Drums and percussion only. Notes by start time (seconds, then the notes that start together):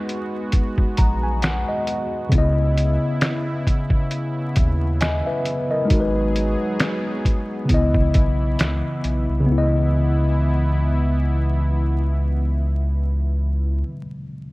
0.09 closed hi-hat
0.52 kick, closed hi-hat
0.78 kick
0.97 kick, closed hi-hat
1.42 finger snap, snare, closed hi-hat
1.87 closed hi-hat
2.32 kick, closed hi-hat
2.77 closed hi-hat
3.21 finger snap, snare, closed hi-hat
3.67 kick, closed hi-hat
3.90 kick
4.11 closed hi-hat
4.56 kick, closed hi-hat
5.01 finger snap, snare, closed hi-hat
5.45 closed hi-hat
5.90 kick, closed hi-hat
6.36 closed hi-hat
6.80 finger snap, snare, closed hi-hat
7.25 kick, closed hi-hat
7.69 kick, closed hi-hat
7.94 kick
8.14 kick, closed hi-hat
8.59 finger snap, snare, closed hi-hat
9.04 closed hi-hat